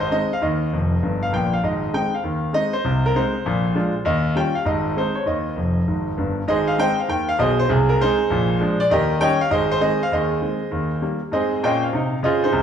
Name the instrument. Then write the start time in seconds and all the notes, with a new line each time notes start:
grand piano
Already playing: G#1 G#2 D#5
0.00 C5
0.11 G#3 C4 D#4 D#5
0.33 F5
0.42 D#2 D#3 D#5
0.73 F1 F2
1.02 G1 G2
1.23 F5
1.33 A#1 A#2 G5
1.53 F5
1.63 G#1 G#2 D#5
1.94 G#3 C4 D#4 G5
2.14 F5
2.23 D#2 D#3
2.53 G#3 C4 D#4 D#5
2.73 C5
2.84 C2 C3
3.06 A#4
3.16 G#3 C4 D#4 C5
3.46 A#1 A#2
3.75 G#3 D4 F4
4.05 D#2 D#3 D#5
4.35 G3 C#4 F4 G5
4.55 F5
4.65 G#1 G#2 D#5
4.97 G#3 C4 D#4 C5
5.15 C#5
5.26 D#2 D#3 D#5
5.56 F1 F2
5.87 G#1 G#2
6.18 G1 G2
6.47 G#1 G#2 G#4 C5 D#5
6.67 F5
6.78 G#3 C4 D#4 C5 D#5 G5
6.99 F5
7.08 D#2 D#3 G5
7.29 F5
7.39 B1 B2 G#4 C5 D#5
7.59 C5
7.69 C2 C3 G#4
7.89 A#4
8.01 G#3 C4 D#4 G#4 C5
8.30 A#1 A#2
8.60 F3 G#3 D4
8.80 D5
8.90 D#2 D#3 G4 A#4 D#5
9.20 D#3 G3 C#4 C#5 D#5 G5
9.41 F5
9.50 G#1 G#2 G#4 C5 D#5
9.71 C5
9.80 D#3 G#3 C4 G#4 C5 D#5
10.03 F5
10.12 D#2 D#3 G#4 C5 D#5
10.41 D#3 G#3 C4
10.71 D#2 D#3
11.02 D#3 G3 A#3
11.32 G#2 C4 G#4 C5 D#5
11.63 A#2 C#4 C5 D#5 G5
11.83 F5
11.93 C3 D#4
12.23 C#3 F4 G#4 C5 D#5
12.44 D#4 G#4 C5
12.52 C2 C3